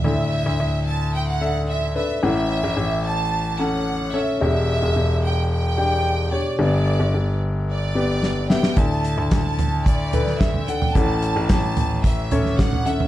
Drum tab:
HH |----------------|----------------|----------------|----------------|
CP |----------------|----------------|----------------|----------------|
SD |----------------|----------------|----------------|------------o-oo|
FT |----------------|----------------|----------------|----------------|
BD |----------------|----------------|----------------|----------------|

HH |x-x-x-x-x-x-x-x-|x-x-x-x-x-x-x-x-|
CP |----x-------x---|----x-------x---|
SD |----o------oo---|----o------oo---|
FT |------o---o--o-o|------o---o--o-o|
BD |o---o---o---o---|o---o---o---o---|